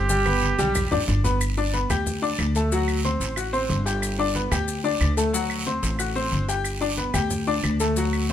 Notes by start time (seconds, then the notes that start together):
Already playing: G1 G4
0.09 G3 G4 G5, high conga, long guiro, maracas
0.26 B3 B4 B5, high conga, claves, maracas
0.42 high conga, short guiro, maracas
0.58 B1 G3 G4 G5, high conga, short guiro, maracas
0.75 low conga, long guiro, claves, maracas
0.91 A1 D4 D5 D6, low conga, maracas
1.08 G1, low conga, short guiro, maracas
1.24 B3 B4 B5, low conga, short guiro, maracas
1.41 high conga, long guiro, claves, maracas
1.57 D4 D5 D6, high conga, maracas
1.73 B3 B4 B5, high conga, short guiro, maracas
1.89 D2 G4 G5 G6, high conga, low conga, short guiro, claves, maracas
2.06 high conga, low conga, long guiro, maracas
2.22 D4 D5 D6, high conga, maracas
2.39 D2, high conga, short guiro, claves, maracas
2.55 A3 A4 A5, short guiro, maracas
2.72 F#3 F#4 F#5, long guiro, maracas
2.88 high conga, claves, maracas
3.04 C4 C5 C6, high conga, short guiro, maracas
3.20 A1, high conga, short guiro, maracas
3.36 F#4 F#5 F#6, high conga, long guiro, claves, maracas
3.53 C4 C5 C6, high conga, maracas
3.69 G1, high conga, short guiro, maracas
3.86 G4 G5 G6, short guiro, maracas
4.02 high conga, long guiro, claves, maracas
4.19 D4 D5 D6, high conga, maracas
4.35 B3 B4 B5, high conga, short guiro, maracas
4.51 D2 G4 G5 G6, high conga, low conga, short guiro, claves, maracas
4.68 high conga, long guiro, maracas
4.84 D4 D5 D6, high conga, maracas
5.00 D2, high conga, short guiro, claves, maracas
5.17 A3 A4 A5, short guiro, maracas
5.33 F#3 F#4 F#5, high conga, long guiro, maracas
5.50 high conga, claves, maracas
5.66 C4 C5 C6, high conga, short guiro, maracas
5.83 A1, high conga, short guiro, maracas
5.99 F#4 F#5 F#6, high conga, long guiro, claves, maracas
6.15 C4 C5 C6, high conga, maracas
6.32 G1, high conga, short guiro, maracas
6.48 G4 G5 G6, short guiro, maracas
6.64 high conga, long guiro, claves, maracas
6.81 D4 D5 D6, high conga, maracas
6.97 B3 B4 B5, high conga, short guiro, maracas
7.14 D2 G4 G5 G6, high conga, low conga, short guiro, claves, maracas
7.30 high conga, low conga, long guiro, maracas
7.47 D4 D5 D6, high conga, maracas
7.63 D2, high conga, short guiro, claves, maracas
7.80 A3 A4 A5, short guiro, maracas
7.96 F#3 F#4 F#5, high conga, long guiro, maracas
8.13 high conga, claves, maracas
8.29 high conga, short guiro, maracas